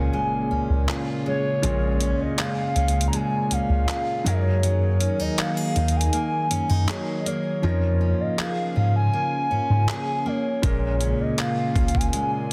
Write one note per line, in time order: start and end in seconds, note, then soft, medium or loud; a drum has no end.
0.00 1.59 A#2 medium
0.00 1.62 A#2 medium
0.00 4.22 C#3 medium
0.00 1.59 G#3 medium
0.00 1.61 A#3 medium
0.00 0.50 C#4 medium
0.00 1.60 C#4 medium
0.00 0.87 F4 medium
0.00 4.22 G#4 medium
0.00 1.60 A#4 medium
0.00 1.08 G#5 loud
0.00 impact medium
0.13 1.26 G#3 medium
0.51 0.59 C#2 soft
0.51 2.00 C#4 medium
0.70 0.86 C#2 medium
0.88 2.37 F4 medium
0.88 clap loud
1.26 3.13 G#3 medium
1.26 2.23 C#5 medium
1.62 2.11 A#1 loud
1.62 4.21 A#2 medium
1.62 4.33 A#2 medium
1.62 4.22 G#3 medium
1.62 4.23 G#3 medium
1.62 4.22 C#4 medium
1.62 4.23 F4 medium
1.62 closed hi-hat medium
2.01 2.75 C#4 medium
2.01 closed hi-hat medium
2.20 2.28 C#2 soft
2.20 2.42 D#5 medium
2.38 3.87 F4 medium
2.38 3.07 F5 loud
2.38 clap loud
2.38 closed hi-hat medium
2.76 3.08 C#2 medium
2.76 3.50 C#4 medium
2.76 closed hi-hat soft
2.88 closed hi-hat medium
3.01 closed hi-hat medium
3.08 3.17 A#5 medium
3.13 4.66 G#3 medium
3.13 3.54 G#5 loud
3.13 closed hi-hat medium
3.51 3.59 C#2 soft
3.51 5.00 C#4 medium
3.51 4.29 F5 loud
3.51 closed hi-hat medium
3.70 3.86 C#2 medium
3.88 4.33 F4 medium
3.88 clap loud
3.88 closed hi-hat medium
4.24 5.06 F#2 medium
4.24 7.60 D#3 medium
4.24 6.84 F#3 medium
4.24 4.62 F#3 medium
4.24 7.60 A#3 medium
4.24 6.84 D#4 medium
4.24 7.60 G#4 medium
4.24 6.85 G#4 medium
4.24 6.85 A#4 medium
4.24 5.23 C#5 medium
4.24 closed hi-hat medium
4.63 7.63 F#3 medium
4.63 closed hi-hat medium
5.00 5.19 C#4 medium
5.00 closed hi-hat medium
5.19 5.28 D#2 soft
5.19 5.75 D#4 soft
5.19 5.41 D#5 medium
5.38 5.57 F#4 medium
5.38 5.97 F5 medium
5.38 clap loud
5.38 closed hi-hat medium
5.57 6.87 G#4 medium
5.76 6.08 D#2 medium
5.76 6.50 D#4 medium
5.76 closed hi-hat soft
5.88 closed hi-hat medium
5.96 7.08 G#5 loud
6.01 closed hi-hat medium
6.13 7.25 A#3 medium
6.13 closed hi-hat medium
6.51 6.59 F#2 soft
6.51 6.69 C#4 medium
6.51 closed hi-hat medium
6.69 6.86 F#2 medium
6.69 7.71 D#4 soft
6.88 7.63 F#3 medium
6.88 7.63 D#4 medium
6.88 8.38 G#4 medium
6.88 7.64 G#4 soft
6.88 7.64 C#5 medium
6.88 clap loud
6.88 closed hi-hat medium
7.20 7.29 D#5 medium
7.26 8.41 A#3 medium
7.26 8.22 C#5 loud
7.26 closed hi-hat medium
7.62 8.11 F2 loud
7.62 12.53 C#3 medium
7.62 10.59 F3 medium
7.62 11.13 F3 medium
7.62 12.53 A#3 medium
7.62 10.59 C#4 medium
7.62 10.60 D#4 medium
7.62 10.60 F4 medium
7.62 10.60 A#4 medium
8.01 8.75 C#4 medium
8.21 8.41 D#5 medium
8.38 9.88 G#4 medium
8.38 8.77 F5 loud
8.38 clap loud
8.76 9.08 G#2 medium
8.76 9.50 C#4 medium
8.76 8.94 F5 medium
8.96 10.29 G#5 loud
9.13 10.25 A#3 medium
9.51 9.59 G#2 soft
9.51 11.00 C#4 medium
9.70 9.86 G#2 medium
9.88 11.38 G#4 medium
9.88 clap loud
10.26 12.13 A#3 medium
10.26 11.23 C#5 medium
10.62 11.11 A#1 loud
10.62 12.53 A#2 medium
10.62 12.53 G#3 medium
10.62 12.53 C#4 medium
10.62 12.53 G#4 medium
10.62 12.53 A#4 medium
10.62 kick loud
10.62 closed hi-hat medium
11.01 11.75 C#4 medium
11.01 closed hi-hat medium
11.21 11.39 D#5 medium
11.38 12.53 F4 medium
11.38 11.98 F5 loud
11.38 clap loud
11.38 closed hi-hat medium
11.76 12.08 C#2 medium
11.76 12.50 C#4 medium
11.76 kick loud
11.76 closed hi-hat soft
11.88 closed hi-hat medium
11.95 12.53 G#5 loud
11.95 kick medium
12.01 closed hi-hat medium
12.13 12.53 G#3 medium
12.13 closed hi-hat medium